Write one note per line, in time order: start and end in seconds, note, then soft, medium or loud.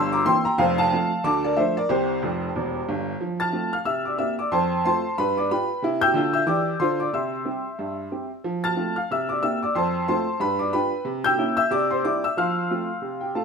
0.00 0.21 G1 medium
0.00 0.21 G2 medium
0.00 0.12 C6 medium
0.00 0.13 E6 loud
0.12 0.26 A#5 medium
0.12 0.26 D6 loud
0.26 0.44 E3 medium
0.26 0.44 A#3 medium
0.26 0.44 C4 medium
0.26 0.45 G5 medium
0.26 0.45 C6 loud
0.45 0.58 G5 medium
0.45 0.59 A#5 loud
0.58 0.86 F1 medium
0.58 0.86 F2 loud
0.58 0.77 C5 medium
0.58 0.77 F5 loud
0.78 1.21 F5 loud
0.78 1.24 A5 loud
0.92 1.10 F3 medium
0.92 1.10 A3 medium
0.92 1.11 C4 medium
1.24 1.52 D2 medium
1.24 1.52 D3 loud
1.24 1.43 A5 medium
1.24 1.44 D6 loud
1.44 1.57 A#4 medium
1.44 1.57 D5 medium
1.56 1.75 F3 soft
1.56 1.75 A3 medium
1.56 1.75 D4 medium
1.56 1.75 C5 medium
1.56 1.76 E5 medium
1.77 1.90 A#4 medium
1.77 1.90 D5 medium
1.89 2.16 C2 medium
1.89 2.16 C3 medium
1.89 2.84 G4 medium
1.89 2.88 C5 loud
2.22 2.47 F1 medium
2.22 2.47 F2 medium
2.55 2.80 E1 medium
2.55 2.80 E2 medium
2.88 3.13 G1 medium
2.88 3.13 G2 medium
3.21 3.48 F3 medium
3.40 3.71 A5 medium
3.40 3.71 F6 medium
3.40 3.73 A6 medium
3.53 3.71 A3 soft
3.53 3.71 C4 medium
3.53 3.71 F4 medium
3.73 3.86 F5 medium
3.73 3.86 F6 medium
3.85 4.13 C3 medium
3.85 4.04 E5 medium
3.85 4.05 E6 medium
4.05 4.19 D5 soft
4.05 4.19 D6 medium
4.18 4.36 A#3 soft
4.18 4.37 C4 soft
4.18 4.37 G4 soft
4.18 4.37 E5 medium
4.18 4.38 E6 medium
4.39 4.52 D5 medium
4.39 4.52 D6 medium
4.52 4.79 F2 medium
4.52 4.83 C5 medium
4.52 4.83 A5 medium
4.52 4.84 C6 medium
4.85 5.03 A3 soft
4.85 5.03 C4 soft
4.85 5.03 F4 medium
4.85 5.16 C5 medium
4.85 5.16 A5 medium
4.85 5.18 C6 loud
5.18 5.46 G2 medium
5.18 5.36 B4 medium
5.18 5.37 B5 loud
5.37 5.50 D5 medium
5.37 5.50 D6 medium
5.51 5.68 G3 soft
5.51 5.69 F4 medium
5.51 5.82 B4 medium
5.51 5.82 G5 medium
5.51 5.83 B5 medium
5.82 6.09 C3 medium
5.82 6.09 E4 medium
6.01 6.32 G5 loud
6.01 6.32 E6 medium
6.01 6.34 G6 loud
6.14 6.40 D3 loud
6.14 6.42 F4 medium
6.33 6.47 E5 medium
6.33 6.47 E6 medium
6.47 6.73 E3 medium
6.47 6.74 G4 medium
6.47 6.78 D5 medium
6.47 6.80 D6 medium
6.80 7.06 D3 medium
6.80 7.07 F4 medium
6.80 6.99 C5 medium
6.80 6.99 C6 medium
7.00 7.13 D5 medium
7.00 7.13 D6 medium
7.13 7.41 C3 medium
7.13 8.27 E5 medium
7.13 8.27 C6 medium
7.13 8.31 E6 medium
7.45 7.63 G3 medium
7.45 7.63 C4 soft
7.45 7.64 G4 soft
7.79 8.07 G2 medium
8.11 8.29 G3 soft
8.11 8.30 C4 soft
8.11 8.30 G4 soft
8.44 8.72 F3 medium
8.64 8.94 A5 medium
8.64 8.94 F6 medium
8.64 8.96 A6 loud
8.77 8.95 A3 soft
8.77 8.95 C4 medium
8.77 8.95 F4 soft
8.96 9.09 F5 medium
8.96 9.09 F6 medium
9.11 9.38 C3 medium
9.11 9.29 E5 medium
9.11 9.30 E6 medium
9.29 9.42 D5 medium
9.29 9.42 D6 medium
9.42 9.60 A#3 soft
9.42 9.61 C4 soft
9.42 9.61 G4 soft
9.42 9.61 E5 medium
9.42 9.62 E6 medium
9.63 9.75 D5 medium
9.63 9.75 D6 medium
9.75 10.03 F2 medium
9.75 10.06 C5 medium
9.75 10.06 A5 medium
9.75 10.07 C6 medium
10.08 10.26 A3 medium
10.08 10.26 C4 medium
10.08 10.26 F4 medium
10.08 10.39 C5 medium
10.08 10.39 A5 medium
10.08 10.41 C6 medium
10.40 10.68 G2 medium
10.40 10.59 B4 medium
10.40 10.60 B5 loud
10.59 10.72 D5 medium
10.59 10.73 D6 medium
10.73 10.91 G3 medium
10.73 10.91 D4 medium
10.73 10.92 F4 medium
10.73 11.04 B4 medium
10.73 11.04 G5 medium
10.73 11.06 B5 medium
11.05 11.33 C3 medium
11.24 11.56 G5 medium
11.24 11.55 E6 loud
11.24 11.57 G6 loud
11.37 11.56 A#3 medium
11.37 11.57 C#4 medium
11.37 11.56 E4 medium
11.57 11.70 E5 medium
11.57 11.71 E6 loud
11.71 11.99 C3 medium
11.71 11.90 D5 medium
11.71 11.90 D6 loud
11.91 12.04 C5 medium
11.91 12.04 C6 medium
12.04 12.22 G3 medium
12.04 12.22 C4 soft
12.04 12.23 E4 medium
12.04 12.23 D5 medium
12.04 12.23 D6 medium
12.24 12.37 E5 medium
12.24 12.37 E6 loud
12.37 12.65 F3 medium
12.37 13.32 F5 medium
12.37 13.32 C6 medium
12.37 13.36 F6 medium
12.70 12.88 A3 soft
12.70 12.88 C4 soft
12.70 12.89 F4 medium
13.02 13.30 C3 medium
13.21 13.35 G4 soft
13.21 13.35 G5 medium
13.35 13.45 A3 soft
13.35 13.45 C4 soft
13.35 13.45 F4 soft
13.35 13.45 A4 medium
13.35 13.45 F5 soft
13.35 13.45 A5 medium